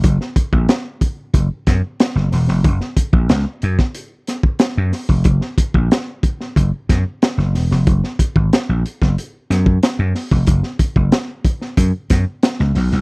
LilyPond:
<<
  \new Staff \with { instrumentName = "Slap bass" } { \clef bass \time 4/4 \key ges \major \tempo 4 = 92 ges,,16 r8 bes,,16 r4 ges,,16 r16 ges,16 r8 ges,,16 fes,,16 f,,16 | ges,,16 r8 bes,,16 des,16 r16 ges,16 r4. ges,16 r16 f,,16 | ges,,16 r8 bes,,16 r4 ges,,16 r16 ges,16 r8 ges,,16 fes,,16 f,,16 | ges,,16 r8 aes,,16 r16 bes,,16 r16 ges,,16 r8 ges,8 r16 ges,16 r16 f,,16 |
ges,,16 r8 ges,,16 r4 ges,16 r16 ges,16 r8 des,16 ces,16 c,16 | }
  \new DrumStaff \with { instrumentName = "Drums" } \drummode { \time 4/4 <hh bd>16 sn16 <hh bd>16 bd16 <hh sn>8 <hh bd>8 <hh bd>8 <hh bd sn>8 <hh sn>16 sn16 <hho sn>16 sn16 | <hh bd>16 sn16 <hh bd>16 bd16 <hh sn>8 hh16 <bd sn>16 hh8 <hh sn>16 bd16 <hh sn>8 <hho sn>16 bd16 | <hh bd>16 sn16 <hh bd>16 bd16 <hh sn>8 <hh bd>16 sn16 <hh bd>8 <hh bd sn>8 <hh sn>16 sn16 <hho sn>16 sn16 | <hh bd>16 sn16 <hh bd>16 bd16 <hh sn>8 hh16 <bd sn>16 hh8 <hh sn>16 bd16 <hh sn>8 <hho sn>16 bd16 |
<hh bd>16 sn16 <hh bd>16 bd16 <hh sn>8 <hh bd>16 sn16 <hh bd>8 <hh bd sn>8 <hh sn>16 sn16 <hho sn>16 sn16 | }
>>